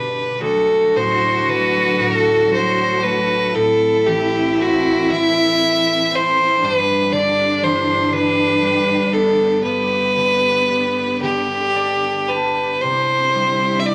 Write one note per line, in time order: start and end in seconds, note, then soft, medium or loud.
0.00 0.37 B2 medium
0.00 0.45 B2 soft
0.00 0.36 D3 medium
0.00 2.66 D4 soft
0.00 0.37 G4 medium
0.00 0.41 B4 medium
0.38 3.59 D2 medium
0.38 3.52 F#3 medium
0.38 3.52 D4 medium
0.38 3.54 F#4 loud
0.38 6.59 A4 medium
0.38 0.98 A4 medium
0.95 1.51 A2 soft
0.95 1.41 C5 medium
1.41 1.50 C5 medium
1.47 2.03 D3 soft
1.47 2.04 B4 medium
1.98 3.54 A2 soft
1.98 2.52 A4 medium
2.50 3.59 F#3 soft
2.50 3.05 C5 medium
3.03 6.36 A3 soft
3.03 3.57 B4 medium
3.53 6.67 A2 medium
3.53 9.60 E3 medium
3.53 6.58 C4 medium
3.53 6.60 E4 loud
3.53 4.08 A4 medium
4.06 5.09 E3 soft
4.06 4.62 G4 medium
4.59 6.11 C4 medium
4.59 5.12 F#4 medium
5.10 6.67 E3 medium
5.10 6.16 E5 loud
5.62 8.23 E4 medium
6.11 9.11 C4 medium
6.11 6.66 C5 medium
6.61 9.63 G2 medium
6.61 9.61 G2 medium
6.61 9.59 D4 loud
6.61 9.61 D4 medium
6.61 12.78 G4 medium
6.61 7.14 B4 medium
7.12 8.11 D3 medium
7.12 7.65 D5 medium
7.62 8.16 E3 medium
7.62 8.14 C5 medium
8.12 9.69 D3 medium
8.12 9.14 B4 medium
8.61 9.69 G3 medium
9.13 10.69 B3 medium
9.13 9.63 A4 medium
9.63 12.87 G2 medium
9.63 12.79 D3 medium
9.63 12.25 B3 medium
9.63 12.80 B3 medium
9.63 11.18 B4 medium
10.16 11.21 D3 soft
10.69 12.88 B3 soft
11.22 12.87 D3 soft
11.22 12.29 G4 medium
11.75 13.86 D4 soft
11.75 13.61 D5 medium
12.28 13.95 G4 soft
12.28 12.82 B4 medium
12.28 13.74 A5 medium
12.80 13.95 C3 medium
12.80 13.95 D3 medium
12.80 13.95 C4 medium
12.80 13.95 E4 medium
12.80 13.95 G4 medium
12.80 13.81 C5 medium
13.35 13.95 G3 soft
13.79 13.87 E5 medium
13.86 13.95 D4 soft
13.86 13.95 D5 medium